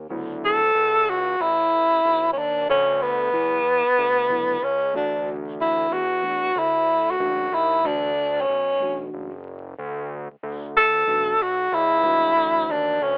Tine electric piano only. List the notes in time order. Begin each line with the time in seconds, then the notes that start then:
0.09 C#3 F#3 B3 E4
3.31 C#3 F#3 B3 E4
4.29 C#3 F#3 B3 E4
4.93 E3 A3 D4 F#4
6.22 E3 A3 D4 F#4
7.19 E3 A3 D4 F#4
7.83 E3 A3 D4 F#4
8.80 E3 A3 D4 F#4
11.06 E3 A3 D4 F#4
12.03 E3 A3 D4 F#4